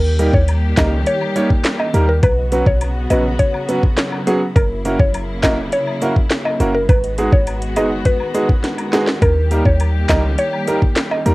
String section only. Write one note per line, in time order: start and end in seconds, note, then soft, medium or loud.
0.00 2.21 D#3 medium
0.00 2.21 G3 medium
0.00 2.21 A#3 medium
0.00 2.21 G4 medium
2.23 4.54 C#3 medium
2.23 6.85 F#3 medium
2.23 4.54 B3 medium
2.23 4.54 F#4 medium
4.56 6.87 C#3 medium
4.56 6.87 A#3 medium
4.56 6.87 E4 medium
6.89 11.35 D#3 medium
6.89 9.20 G#3 medium
6.89 9.20 B3 medium
6.89 9.20 F#4 medium
9.22 11.35 G3 medium
9.22 11.35 A#3 medium
9.22 11.35 G4 medium